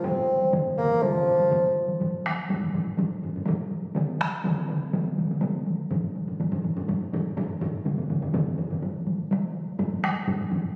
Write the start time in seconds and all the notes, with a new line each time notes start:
0.04 C4, taiko low-mid, taiko mid, taiko high
0.41 taiko high
0.53 taiko low-mid, taiko mid, taiko high
0.78 A#3, taiko low-mid, taiko mid
0.90 taiko high
1.02 F3, taiko low-mid, taiko mid, taiko high
1.15 taiko low-mid, taiko mid
1.27 taiko low-mid, taiko mid
1.39 taiko low-mid, taiko mid, taiko high
1.51 taiko low-mid, taiko mid, taiko high
1.88 taiko high
2.00 taiko low-mid, taiko high
2.12 taiko high
2.25 taiko rim, taiko high
2.37 taiko high
2.49 taiko low-mid, taiko high
2.61 taiko high
2.73 taiko low-mid, taiko high
2.86 taiko high
2.97 taiko low-mid, taiko high
3.10 taiko high
3.22 taiko low-mid, taiko high
3.34 taiko low-mid, taiko high
3.47 taiko low-mid, taiko high
3.59 taiko high
3.71 taiko high
3.83 taiko high
3.95 taiko mid, taiko high
4.08 taiko high
4.20 taiko rim, taiko high
4.32 taiko high
4.44 taiko mid, taiko high
4.56 taiko high
4.69 taiko mid, taiko high
4.81 taiko high
4.93 taiko mid, taiko high
5.05 taiko high
5.17 taiko mid, taiko high
5.30 taiko mid, taiko high
5.42 taiko mid, taiko high
5.54 taiko high
5.67 taiko high
5.79 taiko high
5.91 taiko low-mid, taiko high
6.03 taiko high
6.16 taiko high
6.28 taiko low-mid, taiko high
6.40 taiko high
6.52 taiko low-mid, taiko high
6.64 taiko high
6.77 taiko low-mid
6.88 taiko low-mid, taiko high
7.00 taiko high
7.13 taiko low-mid, taiko high
7.25 taiko high
7.37 taiko low-mid, taiko high
7.49 taiko high
7.61 taiko low-mid, taiko high
7.73 taiko high
7.85 taiko low-mid, taiko mid, taiko high
7.98 taiko low-mid, taiko mid, taiko high
8.10 taiko low-mid, taiko mid, taiko high
8.21 taiko low-mid, taiko mid, taiko high
8.33 taiko low-mid, taiko mid, taiko high
8.46 taiko high
8.58 taiko low-mid, taiko mid, taiko high
8.70 taiko low-mid, taiko mid, taiko high
8.82 taiko high
8.94 taiko high
9.07 taiko high
9.19 taiko high
9.31 taiko high
9.43 taiko high
9.55 taiko high
9.67 taiko high
9.79 taiko low-mid, taiko high
10.03 taiko rim, taiko high
10.16 taiko high
10.27 taiko low-mid, taiko high
10.40 taiko high
10.52 taiko low-mid, taiko high
10.64 taiko high